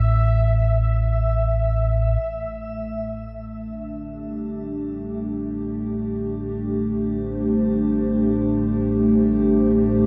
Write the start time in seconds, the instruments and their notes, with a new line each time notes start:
Already playing: synth drone A1 A2, synth texture E5
2.22 synth drone A1 A2, analog synth pad A3
3.65 analog synth pad D4
4.11 analog synth pad G4
7.08 analog synth pad C5